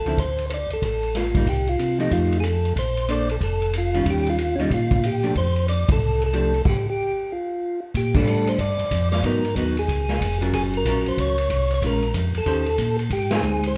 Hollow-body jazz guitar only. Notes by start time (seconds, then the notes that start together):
0.06 D3 F3 C4 E4
1.35 G3 A#3 D#4
1.99 F3 A3 D#4 G4
3.09 A#3 D4 A4 C5
3.94 D#3 G3 C#4 F4
4.59 D#3 G3 C#4 F4
5.23 F3 A3 D4 G4
6.33 F3 A3 D4 G4
8.15 G3 D4 F4
9.24 F#3 B3 D#4
9.56 F#3 B3 D#4
10.41 F#3 C#4 F4 A#4
10.86 F#3 C#4 F4 A#4
11.83 G#3 C#4 F4
12.46 D#3 C#4 G4 C5
13.31 G#3 C4 D#4